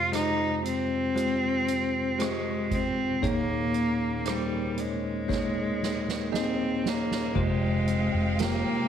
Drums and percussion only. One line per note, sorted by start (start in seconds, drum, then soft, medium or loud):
0.13 cross-stick medium
0.13 closed hi-hat medium
0.65 closed hi-hat medium
1.17 closed hi-hat medium
1.68 closed hi-hat medium
2.20 cross-stick medium
2.20 closed hi-hat medium
2.71 kick medium
2.71 closed hi-hat medium
3.23 kick medium
3.23 closed hi-hat medium
3.74 closed hi-hat soft
4.25 cross-stick medium
4.25 closed hi-hat medium
4.78 closed hi-hat medium
5.29 kick medium
5.29 snare soft
5.83 snare medium
6.08 snare medium
6.34 snare medium
6.86 snare medium
7.11 snare medium
7.35 kick loud
7.35 crash medium
7.88 closed hi-hat medium
8.39 snare loud
8.39 closed hi-hat medium